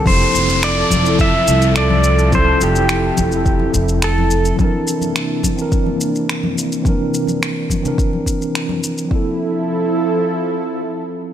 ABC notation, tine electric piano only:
X:1
M:4/4
L:1/16
Q:1/4=106
K:F
V:1 name="Tine electric piano"
[F,CEA]6- [F,CEA] [F,CEA]8- [F,CEA] | [F,CEA]6- [F,CEA] [F,CEA]8- [F,CEA] | [E,CDB]6- [E,CDB] [E,CDB]8- [E,CDB] | [E,CDB]6- [E,CDB] [E,CDB]8- [E,CDB] |
[F,CEA]16 |]